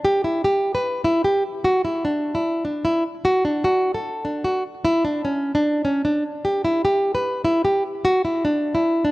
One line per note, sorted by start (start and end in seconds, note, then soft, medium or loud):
0.05 0.23 G4 loud
0.24 0.43 E4 medium
0.44 0.73 G4 medium
0.75 1.03 B4 medium
1.04 1.23 E4 medium
1.24 1.43 G4 medium
1.64 1.83 F#4 loud
1.85 2.03 E4 medium
2.05 2.33 D4 medium
2.35 2.63 E4 medium
2.65 2.83 D4 medium
2.85 3.03 E4 medium
3.25 3.43 F#4 loud
3.45 3.63 D4 medium
3.64 3.93 F#4 medium
3.94 4.23 A4 medium
4.25 4.43 D4 medium
4.44 4.63 F#4 medium
4.85 5.03 E4 loud
5.05 5.23 D4 medium
5.25 5.53 C#4 medium
5.55 5.83 D4 medium
5.85 6.03 C#4 medium
6.05 6.23 D4 medium
6.45 6.63 G4 loud
6.65 6.83 E4 medium
6.85 7.13 G4 medium
7.15 7.43 B4 medium
7.45 7.63 E4 medium
7.65 7.83 G4 medium
8.05 8.23 F#4 loud
8.25 8.43 E4 medium
8.45 8.73 D4 medium
8.75 9.03 E4 medium
9.05 9.12 D4 medium